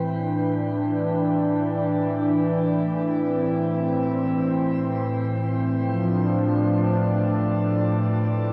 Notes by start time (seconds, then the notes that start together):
Already playing: A2 E3 B4 G5
0.05 D4
2.62 A2
3.17 C4
5.81 F3
5.97 D4